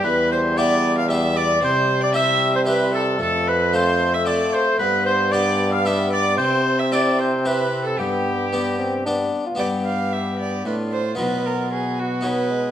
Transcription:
<<
  \new Staff \with { instrumentName = "Oboe" } { \time 3/4 \key g \mixolydian \tempo 4 = 113 b'8 c''8 d''8. f''16 e''8 d''8 | c''8. d''16 e''8. c''16 b'8 a'8 | a'8 b'8 c''8. e''16 d''8 c''8 | b'8 c''8 d''8. f''16 e''8 d''8 |
c''8. e''16 d''8 c''8 b'8. a'16 | g'2 r4 | g'4 g'4 f'4~ | f'4 fis'4 aes'4 | }
  \new Staff \with { instrumentName = "Violin" } { \time 3/4 \key g \mixolydian b'8 c''8 d''8. f''16 e''8 d''8 | c''8. d''16 e''8. c''16 b'8 a'8 | a'8 b'8 c''8. e''16 d''8 c''8 | b'8 c''8 d''8. f''16 e''8 d''8 |
c''8. e''16 d''8 c''8 b'8. a'16 | g'2 r4 | d''8 f''8 e''8 d''8 b'8 c''8 | b'8 bes'8 aes'8 fis'8 b'4 | }
  \new Staff \with { instrumentName = "Harpsichord" } { \time 3/4 \key g \mixolydian r4 <b e' g'>4 <b e' g'>4 | r4 <c' e' g'>4 <c' e' g'>4 | r4 <c' f' a'>4 <c' f' a'>4 | r4 <b d' g'>4 <b d' g'>4 |
r4 <c' e' g'>4 <c' e' g'>4 | r4 <b d' g'>4 <b d' g'>4 | <b d' g'>2. | <fis b dis'>2 <b dis' fis'>4 | }
  \new Staff \with { instrumentName = "Harpsichord" } { \clef bass \time 3/4 \key g \mixolydian e,2. | c2. | f,2~ f,8 r8 | g,2. |
c2. | g,2~ g,8 r8 | g,2 a,4 | b,2. | }
  \new Staff \with { instrumentName = "Bassoon" } { \time 3/4 \key g \mixolydian g2 g4 | g4 g2 | a8 r8 a2 | b4 b2 |
c'2. | b4 b8 c'8 d'8. f'16 | b2 d'4 | b4 b4 fis8 aes8 | }
  \new Staff \with { instrumentName = "Trombone" } { \clef bass \time 3/4 \key g \mixolydian e,2. | c2. | f,2~ f,8 r8 | g,2. |
c2. | g,2~ g,8 r8 | g,2 a,4 | b,2. | }
>>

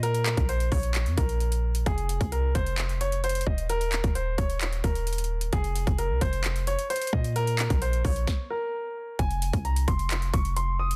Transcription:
<<
  \new Staff \with { instrumentName = "Grand piano" } { \time 4/4 \key f \minor \tempo 4 = 131 bes'4 c''8 des''4 bes'4. | aes'4 bes'8 c''4 des''8 c''8 ees''8 | bes'4 c''8 des''4 bes'4. | aes'4 bes'8 c''4 des''8 c''8 ees''8 |
bes'4 c''8 des''4 bes'4. | aes''4 bes''8 c'''4 des'''8 c'''8 ees'''8 | }
  \new Staff \with { instrumentName = "808-style bass" } { \clef bass \time 4/4 \key f \minor bes,8. bes,,8. bes,,8. f,16 bes,,4. | f,,8. c,8. f,,2 ees,,8~ | ees,,8. ees,,8. ees,,4 ees,,4. | f,,8. f,,8 c,16 f,,4~ f,,16 r8. bes,8~ |
bes,8. bes,,8. bes,,8 r2 | f,,8. c,8. f,,4 f,,4. | }
  \new DrumStaff \with { instrumentName = "Drums" } \drummode { \time 4/4 hh16 hh16 <hc hh>16 <hh bd>16 hh16 hh16 <hho bd>16 hh16 <hc hh>16 hh16 <hh bd>16 hh16 hh16 hh8 hh16 | <hh bd>16 hh16 hh16 <hh bd>16 hh8 <hh bd>16 hh16 <hc hh>16 hh16 hh16 hh16 hh32 hh32 hh32 hh32 bd16 hh16 | hh16 hh16 <hc hh>16 <hh bd>16 hh8 <hh bd>16 hh16 <hc hh>16 hh16 <hh bd>16 hh16 hh32 hh32 hh32 hh16. hh16 | <hh bd>16 hh16 hh16 <hh bd>16 hh8 <hh bd>16 hh16 <hc hh>16 hh16 hh16 hh16 hh32 hh32 hh32 hh32 bd16 hh16 |
hh16 hh16 <hc hh>16 <hh bd>16 hh16 hh16 <hho bd>16 hh16 <bd sn>4 r4 | <hh bd>16 hh16 hh16 <hh bd>16 hh16 hh16 <hh bd>16 hh16 <hc hh>16 hh16 <hh bd>16 hh16 hh8. hh16 | }
>>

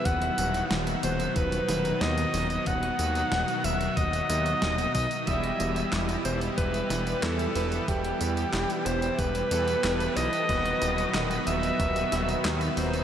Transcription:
<<
  \new Staff \with { instrumentName = "Alto saxophone" } { \time 4/4 \key e \minor \tempo 4 = 92 fis''4 r8 c''8 b'4 dis''4 | fis''4. e''8 dis''4. dis''8 | e''4 r8 c''8 b'4 a'4 | g'4. c''8 b'4. dis''8~ |
dis''4 r8 e''4. r8 c''8 | }
  \new Staff \with { instrumentName = "Analog polysynth" } { \time 4/4 \key e \minor r1 | r1 | <g e' g'>2.~ <g e' g'>8 <b e' g' b'>8 | <g e' g'>2~ <g e' g'>8 <b e' g' a'>4. |
<dis b fis' b'>2.~ <dis b fis' b'>8 <b dis' fis' b'>8 | }
  \new Staff \with { instrumentName = "Analog synth pad" } { \clef bass \time 4/4 \key e \minor << { <dis fis>1~ | <dis fis>1 | <e g>1~ | <e g>1 |
<dis fis>1 | } \\ { b,1~ | b,1~ | b,1~ | b,1 |
b,1 | } >> }
  \new Staff \with { instrumentName = "Analog synth bass" } { \clef bass \time 4/4 \key e \minor dis,,8 dis,,8 dis,,8 dis,,8 dis,,8 dis,,8 dis,8 dis,,8 | dis,,8 dis,8 dis,,8 dis,,8 dis,,8 dis,8 dis,,8 b,,8 | e,,8 e,,8 e,,8 e,,8 e,,8 e,,8 e,8 e,,8 | e,,8 e,8 e,,8 e,,8 e,,8 e,8 e,,8 b,,8 |
dis,,8 dis,,8 dis,,8 dis,,8 dis,,8 dis,,8 dis,8 dis,,8 | }
  \new DrumStaff \with { instrumentName = "Drums" } \drummode { \time 4/4 <hh bd tamb>16 hh16 <hh tamb>16 <hh tamb>16 <hh sn tamb>16 <hh tamb>16 <hh tamb>16 <hh tamb>16 <hh bd tamb>16 <hh tamb>16 <hh sn tamb>16 <hh tamb>16 <hh sn tamb>16 <hh tamb>16 <hho tamb>16 <hh tamb>16 | <hh bd tamb>16 hh16 <hh tamb>16 <hh tamb>16 <hh sn tamb>16 <hh tamb>16 <hh tamb>16 <hh tamb>16 <hh bd tamb>16 <hh tamb>16 <hh tamb>16 <hh tamb>16 <hh sn tamb>16 <hh tamb>16 <hho bd tamb>16 <hh tamb>16 | <hh bd tamb>16 hh16 <hh tamb>16 <hh tamb>16 <hc hh sn tamb>16 <hh tamb>16 <hh tamb>16 <hh tamb>16 <hh bd tamb>16 <hh tamb>16 <hh sn tamb>16 <hh tamb>16 <hc hh sn tamb>16 <hh tamb>16 <hho tamb>16 <hh tamb>16 | <hh bd tamb>16 hh16 <hh tamb>16 <hh tamb>16 <hc hh sn tamb>16 <hh tamb>16 <hh tamb>16 <hh tamb>16 <hh bd tamb>16 <hh tamb>16 <hh tamb>16 <hh tamb>16 <hc hh sn tamb>16 <hh tamb>16 <hho tamb>16 <hh tamb>16 |
<hh bd tamb>16 hh16 <hh tamb>16 <hh tamb>16 <hc hh sn tamb>16 <hh tamb>16 <hh tamb>16 <hh tamb>16 <hh bd tamb>16 <hh tamb>16 <hh sn tamb>16 <hh tamb>16 <hc hh sn tamb>16 <hh tamb>16 <hho tamb>16 <hh tamb>16 | }
>>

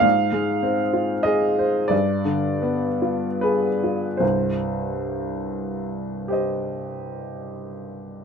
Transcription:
<<
  \new Staff \with { instrumentName = "Upright piano" } { \time 6/8 \key c \minor \tempo 4. = 29 << { f''4 ees''8 d''4 b'8 | c''2. | } \\ { r2. | r4. <g' c'' ees''>4. | } >> }
  \new Staff \with { instrumentName = "Upright piano" } { \time 6/8 \key c \minor aes,16 aes16 c'16 f'16 aes'16 c''16 g,16 d16 b16 f'16 aes'16 f'16 | <c, g,>2. | }
>>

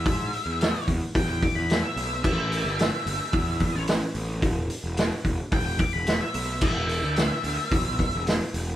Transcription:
<<
  \new Staff \with { instrumentName = "Lead electric guitar" } { \time 4/4 \key a \major \tempo 4 = 110 e''4. r8 g''16 g''16 d'''16 b''8 e''8. | e''2. r4 | r2 g''16 g''16 d'''16 b''8 e''8. | e''2. r4 | }
  \new Staff \with { instrumentName = "Picked electric bass" } { \clef bass \time 4/4 \key a \major gis,8 r16 e,8 r16 e,16 r16 e,8 r16 e,8 r16 b,,8 | a,,8. g,,8 r16 g,,16 r16 e,8. a,,8 r16 a,,8 | e,,8 r16 e,,8 r16 e,,16 r16 e,,8 r16 e,,8 r16 b,,8 | e,,8. d,8 r16 d,16 r16 b,,8. e,,8 r16 e,,8 | }
  \new DrumStaff \with { instrumentName = "Drums" } \drummode { \time 4/4 <hho bd>8 hho8 <hho sn>8 <hho bd>8 <hho bd>8 <hho bd>8 <hho sn>8 hho8 | <cymc bd>8 hho8 <hho sn>8 hho8 <hho bd>8 <hho bd>8 <hho sn>8 hho8 | <hho bd>8 hho8 <hho sn>8 <hho bd>8 <hho bd>8 <hho bd>8 <hho sn>8 hho8 | <cymc bd>8 hho8 <hho sn>8 hho8 <hho bd>8 <hho bd>8 <hho sn>8 hho8 | }
>>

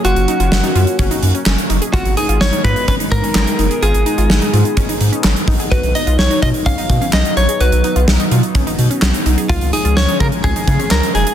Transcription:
<<
  \new Staff \with { instrumentName = "Clean electric guitar" } { \time 4/4 \key b \lydian \tempo 4 = 127 fis'2. r4 | fis'8 gis'8 cis''8 b'8 b'8 ais'4. | gis'2. r4 | b'8 dis''8 cis''8 dis''8 eis''4 dis''8 cis''8 |
b'4 r2. | eis'8 gis'8 cis''8 ais'8 gis'4 ais'8 gis'8 | }
  \new Staff \with { instrumentName = "Synth pluck" } { \time 4/4 \key b \lydian eis'8 dis'16 eis'8 dis'16 eis'8 cis'16 dis'8 cis'16 cis'8 dis'16 gis'16 | eis'8 dis'16 eis'8 dis'16 eis'8 cis'16 dis'8 cis'16 cis'8 dis'16 gis'16 | eis'8 dis'16 eis'8 dis'16 eis'8 cis'16 dis'8 cis'16 cis'8 dis'16 gis'16 | fis'8 dis'16 eis'8 dis'16 eis'8 cis'16 dis'8 cis'16 cis'8 dis'16 gis'16 |
fis'8 dis'16 eis'8 dis'16 eis'8 cis'16 dis'8 cis'16 cis'8 dis'16 gis'16 | eis'8 dis'16 eis'8 dis'16 eis'8 cis'16 dis'8 cis'16 cis'8 dis'16 gis'16 | }
  \new Staff \with { instrumentName = "Analog synth pad" } { \time 4/4 \key b \lydian << { <ais cis'>1 | <b dis'>1~ | <b dis'>1~ | <b dis'>1~ |
<b dis'>1 | <gis cis'>1 | } \\ { fis1 | gis1~ | gis1 | fis1~ |
fis1 | eis1 | } >> }
  \new Staff \with { instrumentName = "Analog synth bass" } { \clef bass \time 4/4 \key b \lydian fis,,16 fis,,16 r16 fis,,16 fis,,16 r16 fis,16 r16 fis,,16 r16 fis,16 r16 fis,,16 r16 fis,,16 r16 | gis,,16 gis,,16 r16 gis,,16 gis,,16 r16 gis,16 r16 gis,,16 r16 gis,16 r16 gis,,16 r16 fis,,16 r16 | gis,,16 gis,,16 r16 gis,,16 gis,,16 r16 gis,16 r16 gis,,16 r16 gis,16 r16 gis,,16 r16 ais,,16 r16 | b,,16 b,,16 r16 b,,16 b,,16 r16 b,16 r16 b,,16 r16 b,16 r16 b,,16 r16 ais,,16 r16 |
b,,16 b,,16 r16 b,,16 b,,16 r16 b,16 r16 b,,16 r16 b,16 r16 b,,16 r16 b,,16 r16 | cis,16 cis,16 r16 cis,16 cis,16 r16 cis16 r16 cis,16 r16 cis16 r16 cis,16 r16 eis,,16 r16 | }
  \new DrumStaff \with { instrumentName = "Drums" } \drummode { \time 4/4 hh16 hh16 hh16 hh16 sn16 hh16 hh16 hh16 <hh bd>16 hh16 hh16 hh16 <hc sn>16 hh16 hh16 hh16 | <hh bd>16 hh16 hh16 hh16 sn16 hh16 <hh bd>16 hh16 <hh bd>16 hh16 <hh bd>16 hh16 <hc sn>16 hh16 hh16 hh16 | hh16 hh16 hh16 hh16 sn16 hh16 hh16 hh16 <hh bd>16 hh16 hh16 hh16 <hc sn>16 hh16 <hho bd>16 hh16 | <hh bd>16 hh16 hh16 hh16 sn16 hh16 <hh bd>16 hh16 <hh bd>16 hh16 <hh bd>16 hh16 <hc sn>16 hh16 hh16 hh16 |
hh16 hh16 hh16 hh16 sn16 hh16 hh16 hh16 <hh bd>16 hh16 hh16 hh16 <hc sn>16 hh16 hh16 hh16 | <hh bd>16 hh16 hh16 hh16 sn16 hh16 <hh bd>16 hh16 <hh bd>16 hh16 <hh bd>16 hh16 <hc sn>16 hh16 hh16 hh16 | }
>>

